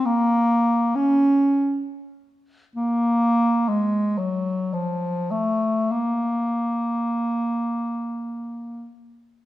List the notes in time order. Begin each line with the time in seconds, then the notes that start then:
0.05 A#3
0.95 C#4
2.76 A#3
3.68 G#3
4.18 F#3
4.73 F3
5.31 A3
5.91 A#3